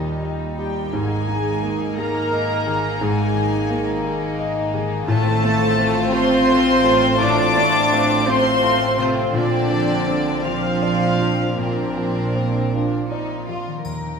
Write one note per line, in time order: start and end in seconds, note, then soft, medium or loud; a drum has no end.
0.00 0.89 D#2 soft
0.00 0.90 D#2 medium
0.00 0.96 A#2 soft
0.00 0.20 D#3 soft
0.00 0.96 D#3 soft
0.00 0.89 G3 soft
0.00 0.96 A#3 soft
0.00 1.27 A#3 soft
0.00 0.21 D#4 medium
0.00 0.57 D#4 soft
0.00 0.89 D#4 soft
0.00 0.21 G4 soft
0.00 0.59 G4 soft
0.00 0.21 D#5 medium
0.00 1.97 D#5 soft
0.23 0.96 G4 soft
0.23 0.79 D#5 soft
0.58 0.91 G3 soft
0.58 4.48 D#4 soft
0.58 0.91 G4 soft
0.58 0.93 G4 soft
0.58 0.91 G5 medium
0.92 5.05 G#1 medium
0.92 3.00 G#2 medium
0.92 2.97 G#2 medium
0.92 1.97 G#3 medium
0.92 5.04 A#3 soft
0.92 5.04 D#4 medium
0.92 1.98 G#4 medium
0.92 1.98 G#5 medium
1.28 1.84 D#3 soft
1.28 3.34 A#3 soft
1.63 2.18 A#3 soft
1.63 2.32 G#4 soft
1.97 3.01 A#3 medium
1.97 2.53 G#4 soft
1.97 3.01 A#4 medium
1.97 4.04 D#5 soft
1.97 2.99 A#5 medium
2.32 3.69 G#4 soft
2.32 2.87 D#5 soft
2.67 4.72 D#3 soft
2.67 3.22 G#4 soft
3.00 5.11 G#2 medium
3.00 5.05 G#2 medium
3.00 4.39 G#3 medium
3.00 4.39 G#4 medium
3.00 4.39 G#5 medium
3.34 3.91 D#3 soft
3.34 5.12 A#3 soft
3.70 4.25 A#3 soft
3.70 4.38 G#4 soft
4.05 4.60 G#4 soft
4.05 5.11 D#5 soft
4.39 5.11 G#4 soft
4.39 4.95 D#5 medium
4.73 5.11 D#3 medium
4.73 5.09 G#4 medium
5.08 9.30 A1 medium
5.08 7.20 A2 medium
5.08 7.16 A2 medium
5.08 6.09 A3 medium
5.08 5.25 A3 medium
5.08 9.30 F4 medium
5.08 6.09 A4 medium
5.08 6.09 A5 loud
5.26 5.43 C4 medium
5.43 6.00 A3 medium
5.43 5.61 A3 medium
5.43 7.56 C4 soft
5.62 5.79 C4 medium
5.78 5.96 A3 medium
5.78 6.34 C4 medium
5.78 6.47 F4 medium
5.96 6.13 C4 medium
6.13 6.31 A3 medium
6.13 7.20 C4 medium
6.13 6.69 F4 medium
6.13 7.20 C5 loud
6.13 8.27 F5 medium
6.13 7.20 C6 loud
6.31 6.48 C4 medium
6.48 6.66 A3 medium
6.48 7.92 F4 medium
6.48 7.06 F5 medium
6.66 6.84 C4 medium
6.85 8.97 A3 medium
6.85 7.02 A3 medium
6.85 7.42 F4 medium
7.02 7.20 C4 medium
7.20 9.30 A2 medium
7.20 9.37 A2 medium
7.20 7.37 A3 medium
7.20 8.25 D4 medium
7.20 8.25 D5 medium
7.20 8.28 D6 loud
7.38 7.56 C4 medium
7.56 8.13 A3 medium
7.56 7.74 A3 medium
7.56 9.70 C4 medium
7.73 7.91 C4 medium
7.92 8.09 A3 medium
7.92 8.48 C4 medium
7.92 8.62 F4 medium
8.09 8.27 C4 medium
8.27 8.45 A3 medium
8.27 8.98 C4 medium
8.27 8.84 F4 medium
8.27 8.98 C5 medium
8.27 12.18 F5 medium
8.27 8.98 C6 loud
8.44 8.62 C4 medium
8.62 8.80 A3 medium
8.62 10.06 F4 medium
8.62 9.20 F5 medium
8.80 8.98 C4 medium
8.98 9.34 C3 medium
8.98 9.16 A3 medium
8.98 9.37 A3 medium
8.98 9.34 C4 medium
8.98 9.34 F4 medium
8.98 9.35 C5 medium
9.16 9.33 C4 medium
9.34 13.60 A#1 medium
9.34 11.56 A#2 medium
9.34 11.54 A#2 medium
9.34 10.42 D3 medium
9.34 10.40 C4 medium
9.34 10.40 D4 medium
9.34 10.44 D4 medium
9.34 10.43 D5 loud
9.71 10.30 F3 soft
9.71 11.95 C4 medium
10.07 10.67 C4 soft
10.07 10.80 F4 soft
10.44 11.57 F3 medium
10.44 11.56 C4 medium
10.44 11.55 D4 medium
10.44 11.04 F4 soft
10.44 11.58 F4 medium
10.44 12.71 D5 soft
10.44 11.58 F5 medium
10.82 12.34 F4 soft
10.82 11.43 D5 soft
11.19 13.47 F3 soft
11.19 11.81 F4 soft
11.57 13.44 A#2 medium
11.57 13.87 A#2 medium
11.57 13.81 A#2 medium
11.57 13.44 A#3 medium
11.57 12.63 C4 medium
11.57 12.63 D4 medium
11.57 13.48 A#4 medium
11.96 12.58 F3 soft
11.96 13.87 C4 soft
12.35 12.96 C4 soft
12.35 13.09 F4 soft
12.72 13.08 D4 medium
12.72 13.33 F4 soft
12.72 13.87 D5 soft
13.10 13.47 D#4 medium
13.10 13.88 F4 soft
13.10 13.71 D5 soft
13.47 13.88 F3 soft
13.47 13.84 F4 soft
13.47 13.85 F4 soft
13.67 14.20 D#3 soft
13.72 14.20 A#3 soft
13.76 14.20 G4 soft
13.81 14.20 D#2 soft
13.81 14.20 D#4 soft
13.85 14.20 D#2 soft
13.85 14.20 D#4 soft
13.85 14.20 A#4 soft
13.85 14.20 G5 soft
13.85 triangle soft